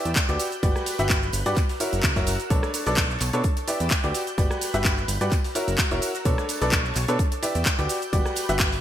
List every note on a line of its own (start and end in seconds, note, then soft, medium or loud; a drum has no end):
0.00 0.26 E4 medium
0.00 0.26 G4 medium
0.00 0.26 B4 medium
0.00 0.26 D5 medium
0.00 0.39 D5 medium
0.00 0.39 E6 medium
0.00 1.55 G6 medium
0.05 0.14 E2 medium
0.05 closed hi-hat soft
0.05 tambourine soft
0.05 shaker soft
0.16 kick loud
0.16 snare loud
0.16 clap loud
0.16 closed hi-hat medium
0.16 tambourine medium
0.16 shaker soft
0.29 0.37 D2 medium
0.29 0.48 F#4 medium
0.29 0.47 G4 medium
0.29 0.47 B4 medium
0.29 0.48 D5 loud
0.29 closed hi-hat soft
0.29 tambourine soft
0.29 shaker soft
0.39 1.56 B4 medium
0.39 1.56 F#6 medium
0.39 closed hi-hat medium
0.39 open hi-hat loud
0.39 tambourine medium
0.39 shaker medium
0.52 closed hi-hat soft
0.52 tambourine soft
0.52 shaker soft
0.63 0.73 G1 loud
0.63 0.96 F#4 medium
0.63 0.96 G4 medium
0.63 0.96 B4 medium
0.63 0.96 D5 loud
0.63 kick loud
0.63 closed hi-hat medium
0.63 tambourine soft
0.63 shaker soft
0.75 cross-stick medium
0.75 snare soft
0.75 tambourine soft
0.75 shaker soft
0.86 closed hi-hat medium
0.86 open hi-hat loud
0.86 tambourine medium
0.86 shaker medium
0.99 1.30 G1 medium
0.99 1.18 F#4 medium
0.99 1.18 G4 medium
0.99 1.18 B4 medium
0.99 1.18 E5 loud
0.99 snare soft
0.99 closed hi-hat soft
0.99 tambourine soft
0.99 shaker soft
1.09 kick loud
1.09 snare loud
1.09 clap loud
1.09 closed hi-hat medium
1.09 tambourine medium
1.09 shaker soft
1.22 tambourine soft
1.22 shaker soft
1.33 1.43 G1 loud
1.33 closed hi-hat medium
1.33 open hi-hat loud
1.33 tambourine medium
1.33 shaker medium
1.46 1.55 G2 medium
1.46 1.55 F#4 medium
1.46 1.55 G4 medium
1.46 1.55 B4 medium
1.46 1.55 D5 loud
1.46 closed hi-hat soft
1.46 tambourine soft
1.46 shaker soft
1.56 2.50 A#4 medium
1.56 2.50 F#5 medium
1.56 2.50 E6 medium
1.56 kick loud
1.56 clap soft
1.56 closed hi-hat medium
1.56 tambourine medium
1.56 shaker soft
1.69 open hi-hat medium
1.69 tambourine soft
1.69 shaker soft
1.80 2.13 E4 medium
1.80 2.13 F#4 medium
1.80 2.13 A#4 medium
1.80 2.13 C#5 medium
1.80 closed hi-hat medium
1.80 open hi-hat loud
1.80 tambourine medium
1.80 shaker medium
1.93 2.01 F#1 medium
1.93 closed hi-hat soft
1.93 tambourine soft
1.93 shaker soft
2.03 2.14 C#2 medium
2.03 kick loud
2.03 snare loud
2.03 clap loud
2.03 closed hi-hat medium
2.03 tambourine medium
2.03 shaker soft
2.16 2.25 F#1 loud
2.16 2.35 E4 medium
2.16 2.35 F#4 medium
2.16 2.35 A#4 medium
2.16 2.35 C#5 medium
2.16 kick medium
2.16 snare soft
2.16 closed hi-hat soft
2.16 tambourine soft
2.16 shaker soft
2.27 2.37 F#1 loud
2.27 closed hi-hat medium
2.27 open hi-hat loud
2.27 tambourine medium
2.27 shaker medium
2.39 snare medium
2.39 closed hi-hat soft
2.39 tambourine soft
2.39 shaker soft
2.50 2.61 B1 loud
2.50 2.84 D4 medium
2.50 2.84 A4 medium
2.50 2.84 B4 medium
2.50 2.84 C#5 loud
2.50 3.43 C#5 medium
2.50 3.43 A5 medium
2.50 kick loud
2.50 closed hi-hat medium
2.50 tambourine soft
2.50 shaker soft
2.62 cross-stick medium
2.62 snare soft
2.62 tambourine soft
2.62 shaker soft
2.74 open hi-hat loud
2.74 open hi-hat medium
2.74 tambourine loud
2.74 shaker medium
2.86 3.17 B1 medium
2.86 3.05 D4 medium
2.86 3.05 A4 medium
2.86 3.05 B4 medium
2.86 3.05 D5 loud
2.86 snare medium
2.86 closed hi-hat soft
2.86 tambourine soft
2.86 shaker soft
2.97 kick loud
2.97 snare loud
2.97 clap loud
2.97 closed hi-hat medium
2.97 tambourine medium
2.97 shaker soft
3.10 snare soft
3.10 tambourine soft
3.10 shaker soft
3.20 3.31 B1 loud
3.20 clap soft
3.20 closed hi-hat medium
3.20 open hi-hat loud
3.20 tambourine medium
3.20 shaker medium
3.33 3.42 B2 medium
3.33 3.43 D4 medium
3.33 3.43 A4 medium
3.33 3.43 B4 medium
3.33 3.43 C#5 loud
3.33 closed hi-hat soft
3.33 tambourine soft
3.33 shaker soft
3.44 4.14 D5 medium
3.44 4.14 E6 medium
3.44 5.30 G6 medium
3.44 kick loud
3.44 closed hi-hat medium
3.44 tambourine soft
3.44 shaker soft
3.57 closed hi-hat medium
3.57 tambourine soft
3.57 shaker soft
3.67 4.01 E4 medium
3.67 4.01 G4 medium
3.67 4.01 B4 medium
3.67 4.01 D5 medium
3.67 closed hi-hat medium
3.67 open hi-hat loud
3.67 tambourine medium
3.67 shaker medium
3.80 3.89 E2 medium
3.80 closed hi-hat soft
3.80 tambourine soft
3.80 shaker soft
3.90 kick loud
3.90 snare loud
3.90 clap loud
3.90 closed hi-hat medium
3.90 tambourine soft
3.90 shaker soft
4.04 4.12 D2 medium
4.04 4.22 F#4 medium
4.04 4.22 G4 medium
4.04 4.22 B4 medium
4.04 4.22 D5 loud
4.04 closed hi-hat soft
4.04 tambourine soft
4.04 shaker soft
4.14 5.31 B4 medium
4.14 5.31 F#6 medium
4.14 closed hi-hat medium
4.14 open hi-hat loud
4.14 tambourine medium
4.14 shaker medium
4.27 closed hi-hat soft
4.27 tambourine soft
4.27 shaker soft
4.38 4.48 G1 loud
4.38 4.71 F#4 medium
4.38 4.71 G4 medium
4.38 4.71 B4 medium
4.38 4.71 D5 medium
4.38 kick loud
4.38 closed hi-hat medium
4.38 tambourine soft
4.38 shaker soft
4.50 cross-stick medium
4.50 snare soft
4.50 tambourine soft
4.50 shaker soft
4.61 closed hi-hat medium
4.61 open hi-hat loud
4.61 tambourine medium
4.61 shaker medium
4.74 5.05 G1 medium
4.74 4.93 F#4 medium
4.74 4.93 G4 medium
4.74 4.93 B4 medium
4.74 4.93 E5 loud
4.74 snare soft
4.74 closed hi-hat medium
4.74 tambourine soft
4.74 shaker soft
4.84 kick loud
4.84 snare loud
4.84 clap loud
4.84 closed hi-hat medium
4.84 tambourine soft
4.84 shaker soft
4.97 tambourine soft
4.97 shaker soft
5.08 5.18 G1 loud
5.08 closed hi-hat medium
5.08 open hi-hat loud
5.08 tambourine medium
5.08 shaker medium
5.21 5.30 G2 medium
5.21 5.30 F#4 medium
5.21 5.30 G4 medium
5.21 5.30 B4 medium
5.21 5.30 D5 loud
5.21 closed hi-hat soft
5.21 tambourine soft
5.21 shaker soft
5.31 6.25 A#4 medium
5.31 6.25 F#5 medium
5.31 6.25 E6 medium
5.31 kick loud
5.31 clap soft
5.31 closed hi-hat medium
5.31 tambourine soft
5.31 shaker soft
5.44 open hi-hat medium
5.44 tambourine soft
5.44 shaker soft
5.55 5.88 E4 medium
5.55 5.88 F#4 medium
5.55 5.88 A#4 medium
5.55 5.88 C#5 medium
5.55 closed hi-hat medium
5.55 open hi-hat medium
5.55 tambourine medium
5.55 shaker medium
5.68 5.76 F#1 medium
5.68 closed hi-hat medium
5.68 tambourine soft
5.68 shaker soft
5.78 kick loud
5.78 snare loud
5.78 clap loud
5.78 closed hi-hat medium
5.78 tambourine soft
5.78 shaker soft
5.91 6.00 E1 medium
5.91 6.10 E4 medium
5.91 6.10 F#4 medium
5.91 6.10 A#4 medium
5.91 6.10 C#5 loud
5.91 snare soft
5.91 closed hi-hat soft
5.91 tambourine soft
5.91 shaker soft
6.02 closed hi-hat medium
6.02 open hi-hat loud
6.02 tambourine medium
6.02 shaker medium
6.14 snare medium
6.14 closed hi-hat soft
6.14 tambourine soft
6.14 shaker soft
6.25 6.36 B1 loud
6.25 6.59 D4 medium
6.25 6.59 A4 medium
6.25 6.59 B4 medium
6.25 6.59 C#5 loud
6.25 7.18 C#5 medium
6.25 7.18 A5 medium
6.25 kick loud
6.25 closed hi-hat medium
6.25 tambourine medium
6.25 shaker soft
6.38 cross-stick medium
6.38 snare soft
6.38 tambourine soft
6.38 shaker soft
6.49 open hi-hat loud
6.49 open hi-hat medium
6.49 tambourine medium
6.49 shaker medium
6.62 6.92 B1 medium
6.62 6.80 D4 medium
6.62 6.80 A4 medium
6.62 6.80 B4 medium
6.62 6.80 D5 loud
6.62 snare soft
6.62 closed hi-hat medium
6.62 tambourine soft
6.62 shaker soft
6.71 kick loud
6.71 snare loud
6.71 clap loud
6.71 closed hi-hat medium
6.71 tambourine soft
6.71 shaker soft
6.85 snare soft
6.85 tambourine soft
6.85 shaker soft
6.95 7.06 B1 loud
6.95 clap soft
6.95 closed hi-hat medium
6.95 open hi-hat loud
6.95 tambourine medium
6.95 shaker medium
7.08 7.17 B2 medium
7.08 7.18 D4 loud
7.08 7.18 A4 medium
7.08 7.18 B4 medium
7.08 7.18 C#5 loud
7.08 closed hi-hat medium
7.08 tambourine soft
7.08 shaker soft
7.19 7.89 D5 medium
7.19 7.89 E6 medium
7.19 8.81 G6 medium
7.19 kick loud
7.19 closed hi-hat medium
7.19 tambourine soft
7.19 shaker soft
7.32 closed hi-hat medium
7.32 tambourine soft
7.32 shaker soft
7.43 7.76 E4 medium
7.43 7.76 G4 medium
7.43 7.76 B4 medium
7.43 7.76 D5 medium
7.43 closed hi-hat medium
7.43 open hi-hat medium
7.43 tambourine medium
7.43 shaker medium
7.55 7.64 E2 medium
7.55 closed hi-hat soft
7.55 closed hi-hat medium
7.55 tambourine soft
7.55 shaker soft
7.66 kick loud
7.66 snare loud
7.66 clap loud
7.66 closed hi-hat medium
7.66 shaker soft
7.79 7.87 D2 medium
7.79 7.97 F#4 medium
7.79 7.97 G4 medium
7.79 7.97 B4 medium
7.79 7.97 D5 loud
7.79 closed hi-hat soft
7.79 tambourine soft
7.79 shaker soft
7.89 8.81 B4 medium
7.89 8.81 F#6 medium
7.89 closed hi-hat medium
7.89 open hi-hat loud
7.89 tambourine medium
7.89 shaker medium
8.02 closed hi-hat medium
8.02 tambourine soft
8.02 shaker soft
8.13 8.23 G1 loud
8.13 8.46 F#4 medium
8.13 8.46 G4 medium
8.13 8.46 B4 medium
8.13 8.46 D5 loud
8.13 kick loud
8.13 closed hi-hat medium
8.13 tambourine soft
8.13 shaker soft
8.25 cross-stick medium
8.25 snare soft
8.25 tambourine soft
8.25 shaker soft
8.36 closed hi-hat medium
8.36 open hi-hat loud
8.36 tambourine medium
8.36 shaker medium
8.49 8.80 G1 medium
8.49 8.68 F#4 loud
8.49 8.68 G4 medium
8.49 8.68 B4 medium
8.49 8.68 E5 loud
8.49 snare soft
8.49 closed hi-hat medium
8.49 tambourine soft
8.49 shaker soft
8.59 kick loud
8.59 snare loud
8.59 clap loud
8.59 closed hi-hat medium
8.59 tambourine soft
8.59 shaker soft
8.72 open hi-hat medium
8.72 tambourine soft
8.72 shaker soft